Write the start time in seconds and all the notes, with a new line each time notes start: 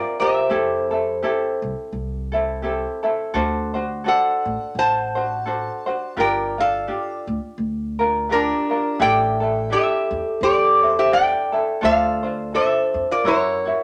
Already playing: C4 F4 G4 A#4 D5
0.19 C4 F4 G4 A#4 C5 E5
0.50 F2 C4 E4 G4 A4
0.91 C4 E4 A4
1.23 C4 E4 G4 A4
1.62 C2
1.92 C2
2.32 C4 E4 A4
2.62 C4 E4 G4 A4
3.03 C4 E4 A4
3.34 D2 D4 F#4 A4 C5
3.74 D4 F#4 C5
4.04 D4 F#4 A4 C5 D5
4.08 F#5
4.45 A1
4.75 A1 C5 F#5 A5
5.15 D4 F#4 C5
5.46 D4 F#4 A4 C5
5.86 D4 F#4 C5
6.17 G1 D4 F4 G4 A#4 D5 G5
6.58 D4 F4 A4 D5 F5
6.88 D4 F4 G4
7.27 D2
7.58 D2
7.99 D4 F4 A#4
8.29 D4 F4 G4 A#4
8.33 D4
8.69 D4 F4 A#4
8.99 A1 D4 E4 G4 A4 D5 E5 G5
9.40 D4 E4 A4
9.70 D4 E4 G4 A4 E5
10.11 E2
10.41 E2 G4 A4 D5
10.82 D4 E4 A4
10.88 C5
10.98 G4 C5 E5
11.11 D4 E4 G4 A4 D5 E5 G5
11.52 D4 E4 A4
11.81 D2 D4 F4 A4 C5 D5 F5
12.23 D4 F4 C5
12.54 D4 F4 A4 C5 E5
12.94 F2
13.11 F4 D5
13.24 F#2 E4 F#4 A#4 C#5
13.65 E4 F#4 C#5